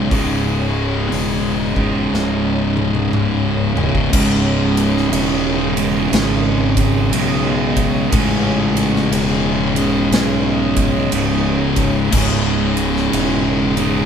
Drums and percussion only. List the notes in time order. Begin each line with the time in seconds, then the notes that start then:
0.11 kick, open hi-hat
1.12 open hi-hat
1.76 kick
2.14 snare
2.77 mid tom
2.95 mid tom
3.13 mid tom
3.77 floor tom
3.95 kick
4.13 kick, crash
4.77 ride
4.97 snare
5.13 ride
5.77 ride
6.13 snare, ride
6.77 kick, ride
7.13 ride
7.77 kick, ride
8.12 kick, ride
8.77 ride
8.96 snare
9.12 ride
9.76 ride
10.12 snare, ride
10.76 kick, ride
11.12 ride
11.76 kick, ride
12.12 kick, crash
12.77 ride
12.96 snare
13.13 ride
13.77 ride